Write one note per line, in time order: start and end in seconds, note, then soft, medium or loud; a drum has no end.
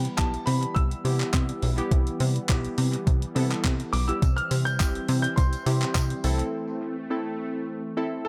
0.00 8.28 E3 medium
0.00 6.20 G3 medium
0.00 4.18 B3 medium
0.05 closed hi-hat soft
0.17 0.37 B1 loud
0.17 0.90 B3 medium
0.17 0.90 E4 medium
0.17 0.90 G4 medium
0.17 0.44 A5 medium
0.17 kick loud
0.17 clap loud
0.17 closed hi-hat medium
0.34 closed hi-hat soft
0.46 0.66 C3 loud
0.46 0.76 B5 medium
0.46 open hi-hat medium
0.63 closed hi-hat medium
0.75 0.95 C2 loud
0.75 1.58 E6 loud
0.75 kick loud
0.75 closed hi-hat medium
0.91 closed hi-hat medium
1.05 1.24 C3 medium
1.05 1.64 B3 medium
1.05 1.64 E4 medium
1.05 1.64 G4 medium
1.05 open hi-hat medium
1.20 clap medium
1.20 closed hi-hat soft
1.34 1.52 C3 loud
1.34 kick loud
1.34 clap loud
1.34 closed hi-hat medium
1.49 closed hi-hat medium
1.62 1.81 B1 medium
1.62 open hi-hat medium
1.78 2.37 B3 loud
1.78 2.37 E4 medium
1.78 2.37 G4 loud
1.78 closed hi-hat medium
1.91 2.10 C2 loud
1.91 kick loud
1.91 closed hi-hat medium
2.07 closed hi-hat medium
2.20 2.39 C3 loud
2.20 open hi-hat medium
2.36 closed hi-hat soft
2.49 2.68 B1 loud
2.49 3.21 B3 medium
2.49 3.21 E4 medium
2.49 3.21 G4 loud
2.49 kick loud
2.49 clap loud
2.49 closed hi-hat medium
2.65 closed hi-hat soft
2.78 2.97 C3 medium
2.78 open hi-hat medium
2.93 closed hi-hat medium
3.07 3.26 C2 loud
3.07 kick loud
3.07 closed hi-hat medium
3.22 closed hi-hat medium
3.35 3.55 C3 loud
3.35 3.95 B3 loud
3.35 3.95 E4 medium
3.35 3.95 A4 loud
3.35 open hi-hat medium
3.51 clap medium
3.51 closed hi-hat medium
3.65 3.83 C3 loud
3.65 kick loud
3.65 clap loud
3.65 closed hi-hat medium
3.80 closed hi-hat medium
3.93 4.12 B1 medium
3.93 4.09 D6 medium
3.93 open hi-hat medium
4.08 4.22 B3 medium
4.08 4.22 E4 medium
4.08 4.22 G4 medium
4.08 4.38 E6 medium
4.08 closed hi-hat medium
4.22 4.41 C2 loud
4.22 8.28 C4 medium
4.22 kick loud
4.22 closed hi-hat medium
4.22 tambourine medium
4.37 4.67 F6 medium
4.37 closed hi-hat soft
4.51 4.82 C3 medium
4.51 open hi-hat medium
4.51 tambourine medium
4.65 5.19 G6 loud
4.65 closed hi-hat soft
4.65 tambourine soft
4.80 4.99 G1 loud
4.80 5.51 C4 medium
4.80 5.52 E4 medium
4.80 5.52 G4 medium
4.80 kick loud
4.80 clap loud
4.80 closed hi-hat medium
4.80 tambourine medium
4.95 closed hi-hat soft
5.08 5.27 C3 loud
5.08 open hi-hat medium
5.08 tambourine soft
5.22 5.27 G6 loud
5.22 closed hi-hat medium
5.36 5.56 C2 loud
5.36 6.19 C6 medium
5.36 kick loud
5.36 closed hi-hat medium
5.36 tambourine medium
5.53 closed hi-hat medium
5.53 tambourine soft
5.66 5.85 C3 loud
5.66 6.23 C4 medium
5.66 6.23 E4 medium
5.66 6.24 G4 medium
5.66 open hi-hat medium
5.66 tambourine medium
5.82 clap medium
5.82 closed hi-hat soft
5.95 6.14 C3 loud
5.95 kick loud
5.95 clap loud
5.95 closed hi-hat medium
5.95 tambourine medium
6.10 closed hi-hat medium
6.24 6.43 C2 medium
6.24 8.28 A3 medium
6.24 6.96 C4 loud
6.24 6.96 E4 medium
6.24 6.96 A4 loud
6.24 open hi-hat medium
6.24 tambourine soft
6.39 closed hi-hat medium
7.10 7.82 C4 medium
7.10 7.82 E4 medium
7.10 7.82 A4 loud
7.97 8.28 C4 loud
7.97 8.28 E4 medium
7.97 8.28 A4 loud
7.97 8.24 E5 medium
8.25 8.28 A4 medium